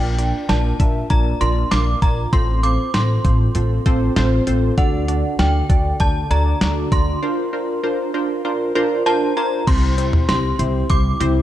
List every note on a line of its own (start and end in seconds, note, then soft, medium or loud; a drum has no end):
0.00 0.31 A#1 loud
0.00 0.15 D4 loud
0.00 0.15 F4 medium
0.00 0.15 A#4 medium
0.00 0.15 D5 loud
0.00 0.51 G5 medium
0.18 0.46 D4 medium
0.18 0.46 F4 medium
0.18 0.46 A#4 medium
0.18 0.46 D5 medium
0.18 closed hi-hat medium
0.49 0.70 A#1 loud
0.49 0.76 D4 medium
0.49 0.76 F4 medium
0.49 0.76 A#4 medium
0.49 0.76 D5 medium
0.49 1.12 A5 medium
0.49 snare loud
0.49 closed hi-hat medium
0.80 1.01 A#1 medium
0.80 1.07 D4 medium
0.80 1.07 F4 medium
0.80 1.07 A#4 medium
0.80 1.07 E5 medium
0.80 kick medium
0.80 closed hi-hat medium
1.10 1.32 A#1 loud
1.10 1.37 D4 medium
1.10 1.38 F4 medium
1.10 1.38 A#4 medium
1.10 1.38 D5 medium
1.10 1.42 A#5 loud
1.10 kick medium
1.10 closed hi-hat medium
1.41 1.62 A#1 loud
1.41 1.68 D4 loud
1.41 1.68 F4 medium
1.41 1.68 A#4 medium
1.41 1.68 D5 loud
1.41 1.72 C6 loud
1.41 closed hi-hat medium
1.71 1.93 A#1 loud
1.71 1.99 D4 medium
1.71 1.99 F4 medium
1.71 1.99 A#4 medium
1.71 1.99 D5 loud
1.71 2.00 D6 loud
1.71 snare loud
1.71 closed hi-hat medium
2.02 2.24 A#1 medium
2.02 2.29 D4 medium
2.02 2.29 F4 medium
2.02 2.29 A#4 medium
2.02 2.29 D5 medium
2.02 2.16 A#5 medium
2.02 kick medium
2.02 closed hi-hat medium
2.33 2.76 A1 loud
2.33 2.60 C4 loud
2.33 2.60 F4 medium
2.33 2.60 A4 medium
2.33 2.60 C5 loud
2.33 2.64 C6 loud
2.33 kick loud
2.33 closed hi-hat medium
2.63 2.91 C4 medium
2.63 2.91 F4 medium
2.63 2.91 A4 medium
2.63 2.91 C5 medium
2.63 2.95 D6 medium
2.63 closed hi-hat medium
2.94 3.15 A1 loud
2.94 3.21 C4 medium
2.94 3.21 F4 medium
2.94 3.21 A4 medium
2.94 3.21 C5 medium
2.94 3.51 C6 medium
2.94 snare loud
2.94 closed hi-hat medium
3.24 3.46 A1 loud
3.24 3.52 C4 medium
3.24 3.52 F4 medium
3.24 3.52 A4 medium
3.24 3.52 C5 medium
3.24 kick medium
3.24 closed hi-hat medium
3.55 3.77 A1 loud
3.55 3.82 C4 medium
3.55 3.82 F4 medium
3.55 3.82 A4 medium
3.55 3.82 C5 medium
3.55 closed hi-hat medium
3.86 4.07 A1 medium
3.86 4.13 C4 loud
3.86 4.13 F4 loud
3.86 4.13 A4 loud
3.86 4.13 C5 loud
3.86 kick medium
3.86 closed hi-hat medium
4.16 4.38 A1 loud
4.16 4.44 C4 loud
4.16 4.44 F4 loud
4.16 4.44 A4 loud
4.16 4.44 C5 loud
4.16 snare loud
4.16 closed hi-hat medium
4.47 4.69 A1 medium
4.47 4.74 C4 medium
4.47 4.74 F4 medium
4.47 4.74 A4 medium
4.47 4.74 C5 loud
4.47 closed hi-hat medium
4.78 5.21 D2 loud
4.78 5.05 D4 loud
4.78 5.05 F#4 medium
4.78 5.05 A4 medium
4.78 5.05 D5 loud
4.78 5.35 F#5 medium
4.78 kick loud
4.78 closed hi-hat medium
5.08 5.35 D4 medium
5.08 5.35 F#4 medium
5.08 5.35 A4 medium
5.08 5.35 D5 medium
5.08 closed hi-hat medium
5.39 5.60 D2 loud
5.39 5.66 D4 medium
5.39 5.66 F#4 medium
5.39 5.66 A4 medium
5.39 5.66 D5 medium
5.39 5.96 G5 medium
5.39 snare loud
5.39 closed hi-hat medium
5.69 5.91 D2 medium
5.69 5.97 D4 medium
5.69 5.97 F#4 medium
5.69 5.97 A4 medium
5.69 5.97 D5 medium
5.69 kick medium
5.69 closed hi-hat medium
6.00 6.22 D2 loud
6.00 6.27 D4 medium
6.00 6.27 F#4 medium
6.00 6.27 A4 medium
6.00 6.27 D5 medium
6.00 6.32 A5 loud
6.00 kick medium
6.00 closed hi-hat medium
6.31 6.52 D2 loud
6.31 6.58 D4 loud
6.31 6.58 F#4 medium
6.31 6.58 A4 medium
6.31 6.58 D5 loud
6.31 6.94 A#5 loud
6.31 closed hi-hat medium
6.61 6.83 D2 loud
6.61 6.88 D4 medium
6.61 6.88 F#4 medium
6.61 6.88 A4 medium
6.61 6.88 D5 loud
6.61 snare loud
6.61 closed hi-hat medium
6.92 7.13 D2 loud
6.92 7.19 D4 medium
6.92 7.19 F#4 medium
6.92 7.19 A4 medium
6.92 7.19 D5 medium
6.92 9.02 C6 medium
6.92 kick loud
6.92 closed hi-hat medium
7.22 7.50 D4 loud
7.22 7.50 F4 medium
7.22 7.50 A#4 medium
7.22 7.50 C5 loud
7.53 7.80 D4 medium
7.53 7.80 F4 medium
7.53 7.80 A#4 medium
7.53 7.80 C5 medium
7.83 8.11 D4 medium
7.83 8.11 F4 medium
7.83 8.11 A#4 medium
7.83 8.11 C5 loud
8.14 8.41 D4 medium
8.14 8.41 F4 medium
8.14 8.41 A#4 medium
8.14 8.41 C5 loud
8.45 8.72 D4 medium
8.45 8.72 F4 medium
8.45 8.72 A#4 medium
8.45 8.72 C5 loud
8.75 9.03 D4 loud
8.75 9.03 F4 loud
8.75 9.03 A#4 loud
8.75 9.03 C5 loud
9.06 9.33 D4 loud
9.06 9.33 F4 loud
9.06 9.33 A#4 loud
9.06 9.33 C5 loud
9.06 9.35 A5 loud
9.37 9.64 D4 medium
9.37 9.64 F4 medium
9.37 9.64 A#4 medium
9.37 9.64 C5 loud
9.37 9.68 A#5 medium
9.67 10.10 C2 loud
9.67 9.95 C4 loud
9.67 9.95 E4 medium
9.67 9.95 G4 medium
9.67 9.95 C5 loud
9.67 10.27 C6 loud
9.67 kick loud
9.67 closed hi-hat medium
9.67 crash loud
9.98 10.25 C4 medium
9.98 10.25 E4 medium
9.98 10.25 G4 medium
9.98 10.25 C5 medium
9.98 closed hi-hat medium
10.13 mid tom medium
10.28 10.50 C2 loud
10.28 10.56 C4 medium
10.28 10.56 E4 medium
10.28 10.56 G4 medium
10.28 10.56 C5 medium
10.28 10.92 C6 loud
10.28 snare loud
10.28 closed hi-hat medium
10.59 10.81 C2 loud
10.59 10.86 C4 medium
10.59 10.86 E4 medium
10.59 10.86 G4 medium
10.59 10.86 C5 medium
10.59 closed hi-hat medium
10.90 11.11 C2 loud
10.90 11.17 C4 medium
10.90 11.17 E4 medium
10.90 11.17 G4 medium
10.90 11.17 C5 medium
10.90 11.42 D6 loud
10.90 kick medium
10.90 closed hi-hat medium
11.20 11.42 C2 loud
11.20 11.42 C4 loud
11.20 11.42 E4 medium
11.20 11.42 G4 medium
11.20 11.42 C5 loud
11.20 closed hi-hat medium